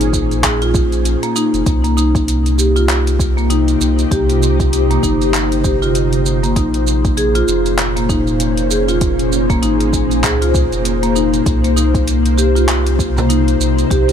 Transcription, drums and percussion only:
0.01 closed hi-hat soft
0.01 shaker soft
0.13 kick medium
0.13 shaker medium
0.31 closed hi-hat soft
0.31 shaker soft
0.44 kick medium
0.44 clap medium
0.44 closed hi-hat medium
0.44 shaker soft
0.62 closed hi-hat soft
0.62 shaker soft
0.74 kick loud
0.74 shaker medium
0.92 closed hi-hat soft
0.92 shaker soft
1.05 closed hi-hat medium
1.05 shaker soft
1.23 closed hi-hat soft
1.23 shaker soft
1.36 shaker medium
1.54 closed hi-hat soft
1.54 shaker soft
1.66 kick loud
1.66 closed hi-hat medium
1.66 shaker soft
1.84 closed hi-hat soft
1.84 shaker soft
1.98 shaker medium
2.15 kick loud
2.15 closed hi-hat soft
2.15 shaker soft
2.28 closed hi-hat medium
2.28 shaker soft
2.46 closed hi-hat soft
2.46 shaker soft
2.59 shaker medium
2.76 closed hi-hat soft
2.76 shaker soft
2.89 clap medium
2.89 closed hi-hat medium
2.89 shaker soft
3.07 closed hi-hat soft
3.07 shaker soft
3.19 kick loud
3.19 shaker medium
3.38 shaker soft
3.50 closed hi-hat medium
3.50 shaker soft
3.68 closed hi-hat soft
3.68 shaker soft
3.81 shaker medium
3.99 closed hi-hat soft
3.99 shaker soft
4.11 kick loud
4.11 closed hi-hat medium
4.11 shaker soft
4.30 closed hi-hat soft
4.30 shaker soft
4.43 shaker medium
4.60 kick medium
4.60 closed hi-hat soft
4.60 shaker soft
4.73 closed hi-hat medium
4.73 shaker soft
4.91 closed hi-hat soft
4.91 shaker soft
5.03 kick medium
5.03 shaker medium
5.22 closed hi-hat soft
5.22 shaker soft
5.34 clap medium
5.34 closed hi-hat medium
5.34 shaker soft
5.52 closed hi-hat soft
5.52 shaker soft
5.64 kick loud
5.64 shaker medium
5.83 shaker soft
5.95 closed hi-hat medium
5.95 shaker soft
6.13 closed hi-hat soft
6.13 shaker soft
6.26 shaker medium
6.44 closed hi-hat soft
6.44 shaker soft
6.56 kick loud
6.56 closed hi-hat medium
6.56 shaker soft
6.74 closed hi-hat soft
6.74 shaker soft
6.87 shaker medium
7.05 kick loud
7.05 closed hi-hat soft
7.05 shaker soft
7.18 closed hi-hat medium
7.18 shaker soft
7.35 closed hi-hat soft
7.35 shaker soft
7.48 shaker medium
7.66 closed hi-hat soft
7.66 shaker soft
7.79 clap medium
7.79 closed hi-hat medium
7.79 shaker soft
7.97 closed hi-hat soft
7.97 shaker soft
8.09 kick loud
8.09 shaker medium
8.27 shaker soft
8.40 closed hi-hat medium
8.40 shaker soft
8.57 closed hi-hat soft
8.57 shaker soft
8.71 shaker medium
8.89 closed hi-hat soft
8.89 shaker soft
9.01 kick loud
9.01 closed hi-hat medium
9.01 shaker soft
9.19 closed hi-hat soft
9.19 shaker soft
9.32 shaker medium
9.50 kick loud
9.50 closed hi-hat soft
9.50 shaker soft
9.63 closed hi-hat medium
9.63 shaker soft
9.80 closed hi-hat soft
9.80 shaker soft
9.93 kick medium
9.93 shaker medium
10.11 closed hi-hat soft
10.11 shaker soft
10.24 kick medium
10.24 clap medium
10.24 closed hi-hat medium
10.24 shaker soft
10.42 closed hi-hat soft
10.42 shaker soft
10.54 kick loud
10.54 shaker medium
10.72 closed hi-hat soft
10.72 shaker soft
10.85 closed hi-hat medium
10.85 shaker soft
11.03 closed hi-hat soft
11.03 shaker soft
11.16 shaker medium
11.34 closed hi-hat soft
11.34 shaker soft
11.46 kick loud
11.46 closed hi-hat medium
11.46 shaker soft
11.64 closed hi-hat soft
11.64 shaker soft
11.77 shaker medium
11.94 kick loud
11.94 closed hi-hat soft
11.94 shaker soft
12.08 closed hi-hat medium
12.08 shaker soft
12.26 closed hi-hat soft
12.26 shaker soft
12.38 shaker medium
12.56 closed hi-hat soft
12.56 shaker soft
12.69 clap medium
12.69 closed hi-hat medium
12.69 shaker soft
12.87 closed hi-hat soft
12.87 shaker soft
12.99 kick loud
12.99 shaker medium
13.18 frame drum medium
13.18 shaker soft
13.30 closed hi-hat medium
13.30 shaker soft
13.48 closed hi-hat soft
13.48 shaker soft
13.61 shaker medium
13.79 closed hi-hat soft
13.79 shaker soft
13.91 kick loud
13.91 closed hi-hat medium
13.91 shaker soft
14.09 closed hi-hat soft
14.09 shaker soft

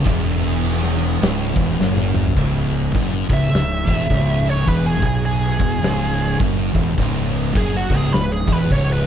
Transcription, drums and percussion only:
0.05 kick loud
0.05 crash medium
0.41 crash medium
0.63 crash medium
0.83 snare soft
0.98 crash medium
1.21 snare loud
1.21 crash medium
1.56 kick loud
1.56 crash medium
1.81 snare medium
1.97 high tom medium
2.14 mid tom medium
2.26 floor tom loud
2.37 kick loud
2.37 crash loud
2.37 crash medium
2.72 crash medium
2.95 kick loud
2.95 crash medium
3.30 kick loud
3.30 crash medium
3.53 snare loud
3.53 crash medium
3.87 kick loud
3.87 crash medium
4.10 kick loud
4.10 crash medium
4.45 crash medium
4.67 kick loud
4.67 crash medium
5.02 kick loud
5.02 crash medium
5.25 crash medium
5.60 kick loud
5.60 crash medium
5.82 snare loud
5.82 crash medium
6.17 crash medium
6.39 kick loud
6.39 crash medium
6.74 kick loud
6.74 crash medium
6.98 kick loud
6.98 crash medium
7.32 crash medium
7.55 kick loud
7.55 crash medium
7.75 snare soft
7.90 kick loud
7.90 crash medium
8.12 snare loud
8.12 crash medium
8.47 kick loud
8.47 crash medium
8.71 kick loud
8.71 crash medium

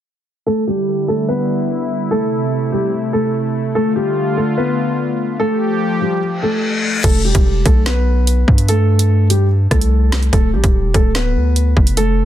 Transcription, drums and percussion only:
7.04 kick loud
7.04 closed hi-hat medium
7.04 crash medium
7.35 kick loud
7.35 closed hi-hat medium
7.66 kick loud
7.66 closed hi-hat medium
7.86 snare loud
7.86 closed hi-hat medium
8.27 closed hi-hat medium
8.48 kick medium
8.58 closed hi-hat medium
8.68 closed hi-hat medium
8.99 closed hi-hat medium
9.30 closed hi-hat medium
9.71 kick medium
9.71 cross-stick medium
9.71 closed hi-hat medium
9.81 closed hi-hat medium
10.12 snare loud
10.12 closed hi-hat medium
10.23 closed hi-hat soft
10.33 kick loud
10.33 closed hi-hat medium
10.64 kick loud
10.64 closed hi-hat medium
10.94 kick loud
10.94 closed hi-hat medium
11.15 snare loud
11.15 closed hi-hat medium
11.56 closed hi-hat medium
11.77 kick loud
11.87 closed hi-hat medium
11.97 closed hi-hat medium

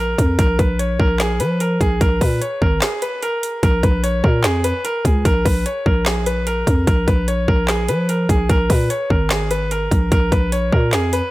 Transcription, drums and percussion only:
0.18 kick medium
0.18 closed hi-hat medium
0.39 kick loud
0.39 closed hi-hat medium
0.59 kick medium
0.59 closed hi-hat medium
0.79 closed hi-hat medium
1.00 kick medium
1.20 snare loud
1.20 clap loud
1.20 closed hi-hat loud
1.40 closed hi-hat medium
1.60 closed hi-hat medium
1.81 kick medium
1.81 closed hi-hat medium
2.01 kick loud
2.01 closed hi-hat medium
2.21 kick loud
2.21 open hi-hat medium
2.42 closed hi-hat medium
2.62 kick medium
2.82 snare loud
2.82 clap loud
2.82 closed hi-hat medium
3.02 closed hi-hat medium
3.23 closed hi-hat medium
3.43 closed hi-hat medium
3.63 kick loud
3.63 closed hi-hat medium
3.83 kick loud
3.83 closed hi-hat medium
4.04 closed hi-hat medium
4.24 kick medium
4.44 snare loud
4.44 clap loud
4.44 closed hi-hat medium
4.64 closed hi-hat medium
4.85 closed hi-hat medium
5.05 kick medium
5.05 closed hi-hat medium
5.25 kick loud
5.25 closed hi-hat medium
5.45 kick medium
5.45 open hi-hat medium
5.66 closed hi-hat medium
5.86 kick medium
6.06 snare loud
6.06 clap loud
6.06 closed hi-hat medium
6.26 closed hi-hat medium
6.47 closed hi-hat medium
6.67 kick medium
6.67 closed hi-hat medium
6.87 kick loud
6.87 closed hi-hat medium
7.08 kick loud
7.08 closed hi-hat medium
7.28 closed hi-hat medium
7.48 kick medium
7.68 snare loud
7.68 clap loud
7.68 closed hi-hat medium
7.89 closed hi-hat medium
8.09 closed hi-hat medium
8.29 kick medium
8.29 closed hi-hat medium
8.50 kick loud
8.50 closed hi-hat medium
8.70 kick loud
8.70 open hi-hat medium
8.90 closed hi-hat medium
9.10 kick medium
9.30 snare loud
9.30 clap loud
9.30 closed hi-hat medium
9.51 closed hi-hat medium
9.71 closed hi-hat medium
9.91 kick medium
9.91 closed hi-hat medium
10.12 kick loud
10.12 closed hi-hat medium
10.32 kick loud
10.32 closed hi-hat medium
10.52 closed hi-hat medium
10.73 kick medium
10.93 snare loud
10.93 clap loud
10.93 closed hi-hat medium
11.13 closed hi-hat medium

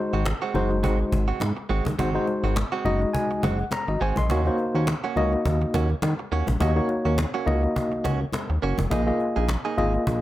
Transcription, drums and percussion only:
0.13 cajon slap soft
0.26 cajon slap medium
0.26 cajon slap loud
0.26 high conga medium
0.42 cajon slap soft
0.55 cajon slap soft
0.55 low conga medium
0.71 cajon slap soft
0.84 cajon bass loud
1.00 cajon slap soft
1.12 cajon bass medium
1.12 muted conga medium
1.29 cajon slap soft
1.40 cajon slap medium
1.40 cajon slap loud
1.40 high conga medium
1.58 cajon slap soft
1.85 cajon bass medium
1.85 high conga medium
1.99 cajon bass loud
1.99 muted conga soft
2.16 cajon slap soft
2.27 cajon slap soft
2.27 muted conga soft
2.44 cajon slap soft
2.56 cajon slap medium
2.56 cajon slap loud
2.56 high conga medium
2.73 cajon slap soft
2.86 low conga medium
3.02 cajon slap soft
3.15 cajon bass loud
3.31 cajon slap soft
3.43 cajon bass medium
3.43 muted conga medium
3.43 low conga medium
3.59 cajon slap soft
3.71 cajon slap medium
3.71 cajon slap loud
3.71 high conga medium
3.88 cajon slap soft
4.16 cajon bass medium
4.16 high conga medium
4.30 cajon bass loud
4.30 muted conga soft
4.46 cajon slap soft
4.58 cajon slap soft
4.75 cajon slap soft
4.87 cajon slap medium
4.87 cajon slap loud
4.87 high conga medium
5.04 cajon slap soft
5.16 cajon slap soft
5.16 low conga medium
5.33 cajon slap soft
5.46 cajon bass loud
5.61 cajon slap soft
5.74 cajon bass medium
5.74 muted conga medium
5.90 cajon slap soft
6.02 cajon slap medium
6.02 cajon slap loud
6.02 high conga medium
6.19 cajon slap soft
6.47 cajon bass medium
6.47 high conga medium
6.61 cajon bass loud
6.61 muted conga soft
6.77 cajon slap soft
6.89 cajon slap soft
6.89 muted conga soft
7.06 cajon slap soft
7.18 cajon slap medium
7.18 cajon slap loud
7.18 high conga medium
7.35 cajon slap soft
7.47 cajon slap soft
7.47 low conga medium
7.64 cajon slap soft
7.76 cajon bass loud
7.92 cajon slap soft
8.05 cajon bass medium
8.05 muted conga medium
8.05 low conga medium
8.21 cajon slap soft
8.33 cajon slap medium
8.33 cajon slap loud
8.33 high conga medium
8.50 cajon slap soft
8.78 cajon bass medium
8.78 high conga medium
8.91 cajon bass loud
8.91 muted conga soft
9.08 cajon slap soft
9.20 cajon slap soft
9.36 cajon slap soft
9.48 cajon slap medium
9.48 cajon slap loud
9.48 high conga medium
9.65 cajon slap soft
9.78 cajon slap soft
9.78 low conga medium
9.94 cajon slap soft
10.07 cajon bass loud

